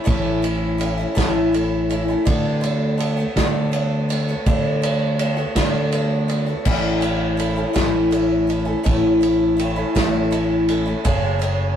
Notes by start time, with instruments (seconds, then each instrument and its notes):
0.04 fingered electric bass A1, twelve-string acoustic guitar A2 E3 A3 C#4 E4, kick, ride
0.42 twelve-string acoustic guitar E3 A3 C#4 E4, ride
0.78 twelve-string acoustic guitar E3 A3 C#4 E4, ride
0.98 twelve-string acoustic guitar A3 C#4 E4
1.15 fingered electric bass A1, twelve-string acoustic guitar A2 E3 A3 C#4 E4, kick, snare, ride
1.53 twelve-string acoustic guitar E3 A3 C#4 E4, ride
1.90 twelve-string acoustic guitar E3 A3 C#4 E4, ride
2.08 twelve-string acoustic guitar A3 C#4 E4
2.25 fingered electric bass D2, twelve-string acoustic guitar D3 A3 B3 F#4, kick, ride
2.61 twelve-string acoustic guitar D3 A3 B3 F#4, ride
2.98 twelve-string acoustic guitar D3 A3 B3 F#4, ride
3.17 twelve-string acoustic guitar A3 B3 F#4
3.36 fingered electric bass D2, twelve-string acoustic guitar D3 A3 B3 F#4, kick, snare, ride
3.72 twelve-string acoustic guitar D3 A3 B3 F#4, ride
4.09 twelve-string acoustic guitar D3 A3 B3 F#4, ride
4.28 twelve-string acoustic guitar A3 B3 F#4
4.46 fingered electric bass D2, twelve-string acoustic guitar D3 A3 B3 F#4, kick, ride
4.82 twelve-string acoustic guitar D3 A3 B3 F#4, ride
5.19 twelve-string acoustic guitar D3 A3 B3 F#4, ride
5.37 twelve-string acoustic guitar A3 B3 F#4
5.55 fingered electric bass D2, twelve-string acoustic guitar D3 A3 B3 F#4, kick, snare, ride
5.92 twelve-string acoustic guitar D3 A3 B3 F#4, ride
6.28 twelve-string acoustic guitar D3 A3 B3 F#4, ride
6.46 twelve-string acoustic guitar A3 B3 F#4
6.65 fingered electric bass A1, twelve-string acoustic guitar A2 E3 A3 C#4 E4, kick, crash
7.01 twelve-string acoustic guitar E3 A3 C#4 E4, ride
7.37 twelve-string acoustic guitar E3 A3 C#4 E4, ride
7.56 twelve-string acoustic guitar A3 C#4 E4
7.73 fingered electric bass A1, twelve-string acoustic guitar A2 E3 A3 C#4 E4, kick, snare, ride
8.11 twelve-string acoustic guitar E3 A3 C#4 E4, ride
8.47 twelve-string acoustic guitar E3 A3 C#4 E4, ride
8.65 twelve-string acoustic guitar A3 C#4 E4
8.83 fingered electric bass A1, twelve-string acoustic guitar A2 E3 A3 C#4 E4, kick, ride
9.21 twelve-string acoustic guitar E3 A3 C#4 E4, ride
9.57 twelve-string acoustic guitar E3 A3 C#4 E4, ride
9.76 twelve-string acoustic guitar A3 C#4 E4
9.95 fingered electric bass A1, twelve-string acoustic guitar A2 E3 A3 C#4 E4, kick, snare, ride
10.31 twelve-string acoustic guitar E3 A3 C#4 E4, ride
10.69 twelve-string acoustic guitar E3 A3 C#4 E4, ride
10.86 twelve-string acoustic guitar A3 C#4 E4
11.04 fingered electric bass F#1, twelve-string acoustic guitar F#2 C#3 F#3 A3 C#4 G#4, kick, ride
11.39 twelve-string acoustic guitar F#3 A3 C#4 G#4, ride